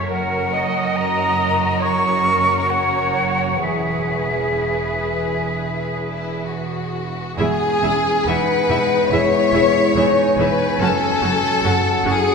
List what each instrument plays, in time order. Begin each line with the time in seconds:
0.09 double bass section F#1, cello section F#2, violin section C#4 F#4 A#4, viola section A#4, flute F#5
0.52 viola section D#5
0.96 flute A#5
1.81 viola section C#5, flute C#6
2.25 viola section A#4
2.68 viola section C#5, flute F#5
3.60 double bass section E1, cello section E2, violin section E4 G#4 B4, viola section G#4, flute E5
6.00 violin section E4
6.46 violin section F#4
7.37 double bass section E1, cello section E2, french horn section G#3 B3, clarinet B3, viola section E4 G#4, violin section G#4 E5, flute G#5
7.82 double bass section E1, cello section E2, clarinet C#4, viola section E4 G#4, violin section E5
8.26 double bass section E1, cello section E2, viola section E3 G#4, clarinet D#4, violin section B4 E5, flute F#5
8.69 double bass section E1, cello section E2, viola section E3 G#4, violin section E5
9.10 double bass section E1, cello section E2, clarinet E4, viola section E4 G#4, violin section C#5 E5, flute E5
9.53 double bass section E1, cello section E2, viola section E4 G#4, clarinet E4, violin section E5
9.95 double bass section E1, cello section E2, viola section E3 G#4, clarinet D#4, violin section E5, flute G#5
10.38 double bass section E1, cello section E2, viola section E3 G#4, violin section B4 E5
10.80 double bass section F#1, cello section F#2, french horn section F#3 C#4, viola section C#4 F#4, clarinet C#4, violin section A4 A5
11.22 double bass section F#1, cello section F#2, viola section C#4 F#4, violin section A5
11.63 double bass section F#1, cello section F#2, viola section C#4 F#4, clarinet C#4, flute F#5, violin section A5
12.05 double bass section F#1, cello section F#2, viola section C#4 F#4, clarinet E4, violin section G#4 A5